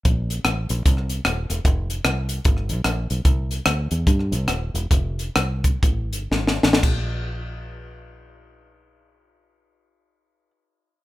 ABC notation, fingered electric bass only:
X:1
M:4/4
L:1/8
Q:"Swing" 1/4=138
K:Fmix
V:1 name="Fingered electric bass" clef=bass
B,,,2 A,,, B,,, C,,2 E,,, =E,,, | F,,,2 C,,2 G,,, =B,,, _B,,, =B,,, | C,,2 D,, =E,, G,, C,, _E,,, =E,,, | F,,,2 C,,2 A,,, G,,, _A,,, =A,,, |
B,,,8- | B,,,8 |]